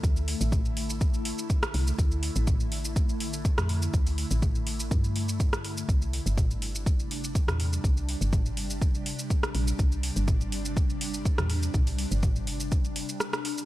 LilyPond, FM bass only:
\new Staff \with { instrumentName = "FM bass" } { \clef bass \time 4/4 \key c \mixolydian \tempo 4 = 123 d,8. a,,2 r8. c,16 r16 | d,8. a,,2~ a,,16 d,16 f,8. | d,8. a,,4~ a,,16 g,2 | c,8. g,,2~ g,,16 c,16 e,8. |
c,8. g,,2 r8. bes,,16 r16 | c,8. g,,2~ g,,16 c,16 e,8. | c,8. g,,2 r4 r16 | }